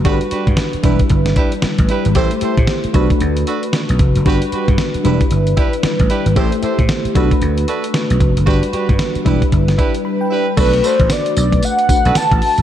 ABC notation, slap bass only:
X:1
M:4/4
L:1/16
Q:"Swing 16ths" 1/4=114
K:Bphr
V:1 name="Slap bass" clef=bass
G,,, z2 G,, z2 E,,, z G,,,2 z3 A,,, z ^G,,, | A,,, z2 A,, z2 B,,, z D,,2 z3 B,,, =F,,, ^F,,, | G,,, z2 G,, z2 E,,, z G,,,2 z3 A,,, z ^G,,, | A,,, z2 A,, z2 B,,, z D,,2 z3 B,,, =F,,, ^F,,, |
G,,, z2 G,, z2 E,,, z G,,,2 z6 | B,,,2 z A,,, z2 B,,,2 z3 B,,, z A,,, z ^G,,, |]